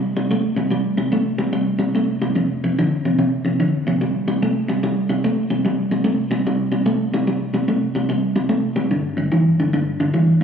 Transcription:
Already playing: C3 G3
0.17 C3 G3
0.31 C3 A3
0.57 C3 G3
0.71 C3 G3
0.97 C3 G3
1.12 C3 A3
1.38 C3 G3
1.53 C3 G3
1.79 C3 G3
1.95 C3 A3
2.22 C3 G3
2.36 F2 C3
2.64 F2 C3
2.79 F2 D3
3.05 F2 C3
3.19 F2 C3
3.45 F2 C3
3.60 F2 D3
3.87 F2 C3
4.01 C3 G3
4.28 C3 G3
4.42 C3 A3
4.68 C3 G3
4.83 C3 G3
5.10 C3 G3
5.24 C3 A3
5.50 C3 G3
5.65 C3 G3
5.91 C3 G3
6.04 C3 A3
6.31 C3 G3
6.47 C3 G3
6.72 C3 G3
6.86 C3 A3
7.14 C3 G3
7.27 C3 G3
7.54 C3 G3
7.68 C3 A3
7.95 C3 G3
8.09 C3 G3
8.36 C3 G3
8.49 C3 A3
8.76 C3 G3
8.91 G2 D3
9.17 G2 D3
9.32 G2 E3
9.60 G2 D3
9.73 G2 D3
10.00 G2 D3
10.14 G2 E3

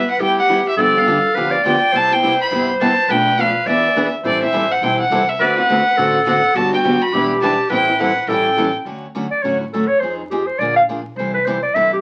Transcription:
Already playing: B4
0.11 F#5
0.18 D2 G3 B3 E4 G4 G5
0.39 F#5
0.50 G3 B3 E4 G4
0.69 E5
0.77 G1 D3 F3 B3 D4 G4 A4
0.81 D5
0.95 B3 D4 G4 F5
1.07 D3 F3 B3 D4 G4
1.34 D2 D3 F3 B3 D4 G4 B4
1.51 D5
1.64 D3 F3 B3 D4 G4 G5
1.92 C2 C3 G3 B3 E4 G4 C5 A5
2.11 B3 E4 G4 G5
2.23 C3 G3 B3 E4 G4
2.41 B5
2.51 G1 C3 G3 B3 E4 G4
2.81 C3 G3 B3 E4 G4 A5
3.08 B1 B2 F3 A3 D4 A4 B4 G5
3.26 A3 D4 A4
3.38 B2 F3 A3 D4 A4 B4 F5
3.66 E2 E3 B3 D4 G#4 B4 D5 E5
3.96 E3 B3 D4 G#4 B4
4.23 A1 E3 G3 C4 E4 A4 C5 D5
4.41 C4 E4 A4 E5
4.52 A1 E3 G3 C4 E4 A4
4.71 F#5
4.81 B1 E3 G3 C4 E4 A4 G5
5.00 F#5
5.10 C2 E3 G3 C4 E4 A4
5.29 E5
5.39 D2 D3 A3 C4 F#4 A4 B4 D5
5.57 C4 F#4 A4 F#5
5.69 D3 A3 C4 F#4 A4
5.97 A1 D3 A3 C4 F#4 A4
6.26 D3 A3 C4 F#4 A4 F#5
6.54 G1 D3 F#3 B3 D4 F#4 G4 A5
6.71 B3 D4 G4 G5
6.84 D3 F#3 B3 D4 G4
7.02 B5
7.12 E1 E3 G3 B3 D4 E4 G4 B4
7.41 E3 G3 B3 D4 E4 G4 B4 A5
7.70 A1 E3 G3 C4 E4 A4 B4 G5
7.87 C4 E4 A4
7.99 E3 G3 C4 E4 A4 F#5
8.27 A1 E3 G3 C#4 E4 A4 G5
8.58 E3 G3 C#4 E4 A4
8.85 D2 D3 F#3 A3 C#4 F#4
9.15 D3 F#3 A3 C#4 F#4
9.31 D5
9.43 A1 D3 F#3 A3 C#4 F#4 C#5
9.60 E4
9.73 D3 F#3 A3 C#4 F#4 A4
9.87 C#5
10.00 F2 F3 C4 D#4 G#4 C5
10.17 D#4
10.30 F3 C4 D#4 G4 G#4
10.46 C5
10.59 A#1 D3 F3 A#3 D4 G#4 D5
10.76 F5
10.89 D3 F3 A#3 D4 G#4
11.16 C2 C3 E3 G3 C4 E4 A4 C5
11.34 B4
11.45 C3 E3 G3 C4 E4 A4 C5
11.63 D5
11.74 G1 C3 E3 G3 C4 E4 A4 E5
11.93 G4

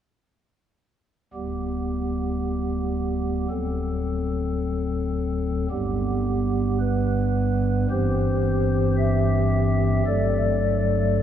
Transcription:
1.33 D1 D2 G3 B3 G4
3.50 D1 D2 F#3 C4 A4
5.70 G1 G2 G3 B3 G4
6.80 B4
7.90 G1 G2 E3 C4 G4 C5
8.98 E5
10.06 G1 G2 F#3 A3 A4 D5

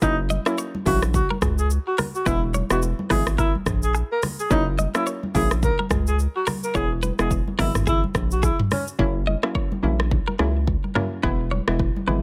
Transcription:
0.02 F#1 F#3 A#3 C#4 D#4 E4, kick, low conga, shaker
0.30 D#5, high conga, shaker
0.46 F#3 A#3 C#4 E4 E5, cross-stick, shaker
0.58 C#5, shaker
0.75 high conga
0.86 A#1 F#3 A#3 C#4 E4 F#4, kick, open hi-hat, high conga, low conga, shaker
1.02 cross-stick, shaker
1.14 F#4, kick, low conga, shaker
1.30 A#4, high conga
1.42 C#2 G#4, kick, cross-stick, mid tom, shaker
1.58 G#4, shaker
1.70 shaker
1.87 F#4
1.98 A#4, cross-stick, open hi-hat, high conga, low conga, shaker
2.15 F#4, shaker
2.26 E1 E3 G#3 B3 E4 B4, kick, low conga, shaker
2.54 C#5, high conga, shaker
2.70 E1 E3 G#3 B3 E4 F#4, cross-stick, shaker
2.82 shaker
2.99 high conga
3.10 G#1 E3 G#3 B3 E4 G#4 B4, kick, cross-stick, open hi-hat, high conga, low conga, shaker
3.27 cross-stick, shaker
3.38 E4 A#4, kick, low conga, shaker
3.55 high conga
3.66 A#1, kick, cross-stick, mid tom, shaker
3.83 G#4, shaker
3.95 G#4, shaker
4.12 A#4
4.23 cross-stick, open hi-hat, high conga, low conga, shaker
4.39 G#4, shaker
4.50 F#1 F#3 A#3 C#4 D#4 E4, kick, low conga, shaker
4.79 D#5, high conga, shaker
4.94 F#3 A#3 C#4 E4 E5, cross-stick, shaker
5.07 C#5, shaker
5.23 high conga
5.34 A#1 F#3 A#3 C#4 E4 G#4, kick, open hi-hat, high conga, low conga, shaker
5.51 cross-stick, shaker
5.63 A#4, kick, low conga, shaker
5.79 A#4, high conga
5.91 C#2 G#4, kick, cross-stick, mid tom, shaker
6.07 G#4, shaker
6.19 shaker
6.36 F#4
6.47 A#4, cross-stick, open hi-hat, high conga, low conga, shaker
6.63 A#4, shaker
6.74 E1 E3 G#3 B3 E4 G#4 C#5, kick, low conga, shaker
7.03 B4, high conga, shaker
7.19 E1 E3 G#3 B3 E4 G#4, cross-stick, shaker
7.31 kick, shaker
7.48 high conga
7.59 G#1 E3 G#3 B3 E4 A#4, kick, cross-stick, open hi-hat, high conga, low conga, shaker
7.75 cross-stick, mid tom, shaker
7.87 E4 G#4, kick, low conga, shaker
8.04 high conga
8.15 A#1, kick, cross-stick, shaker
8.31 F#4, shaker
8.43 E4 G#4, kick, shaker
8.59 mid tom, high conga
8.71 C#4, cross-stick, open hi-hat, high conga, low conga, shaker
8.88 shaker
8.99 F#1 F#3 A#3 C#4 E4, kick, low conga
9.27 D#5, high conga
9.43 F#3 A#3 C#4 E4 E5, cross-stick
9.55 C#5, kick
9.72 high conga
9.83 A#1 F#3 A#3 C#4 E4, high conga, low conga
10.00 cross-stick
10.11 kick, low conga
10.28 A#4, high conga
10.39 C#2 F#3 A#3 C#4 E4 G#4, cross-stick
10.67 kick
10.84 high conga
10.95 F#3 A#3 C#4 E4 A#4, cross-stick, mid tom, high conga, low conga
11.23 E1 E3 G#3 B3 E4 B4, kick, low conga
11.51 C#5, high conga
11.68 E1 E3 G#3 B3 E4, cross-stick
11.79 kick
11.96 high conga
12.07 G#1 E3 G#3 B3 E4 B4, high conga, low conga

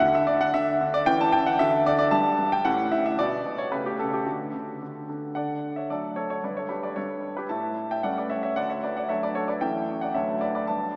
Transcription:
0.00 D3 D4 F#4 F#5
0.15 E5
0.27 D3 D5
0.41 F#5
0.54 D3 E5
0.81 D3
0.94 D5
1.06 E3 C#4 E4 G5
1.21 A5
1.32 E3 G5
1.46 F#5
1.59 D3 D4 F#4 E5
1.86 D3 D5
1.99 D5
2.11 G2 D4 G4 A5
2.39 G2
2.52 G5
2.65 A2 C#4 G4 F#5
2.92 A2 E5
3.06 E5
3.19 B2 B3 F#4 D5
3.45 B2
3.58 C#5
3.72 C#3 A3 G4 B4
3.86 G4
3.99 C#3 A4
4.13 G4
4.25 D3 A3 F#4
4.54 D3
4.82 D3
5.09 D3
5.35 D3 D5 F#5
5.76 C#5 E5
5.90 F#3 A3 D4 A4 D5
6.16 A4 C#5
6.30 A4 C#5
6.44 G2 B4 D5
6.57 A4 C#5
6.69 G4 B4
6.83 B4 D5
6.96 G3 B3 D4 A4 C#5
7.37 G4 B4
7.49 A2 E5 A5
7.91 E5 G5
8.03 G3 A3 C#4 D5 F#5
8.18 B4 D5
8.30 C#5 E5
8.43 C#5 E5
8.56 D2 D5 F#5
8.70 C#5 E5
8.83 B4 D5
8.97 D5 F#5
9.09 F#3 A3 D4 C#5 E5
9.23 B4 D5
9.35 A4 C#5
9.48 B4 D5
9.61 E2 E3 A3 C#4 E5 G5
10.01 D5 F#5
10.14 D2 F#3 A3 D4 C#5 E5
10.41 B4 D5
10.55 B4 D5
10.67 G2 G3 B3 D4 D5 A5

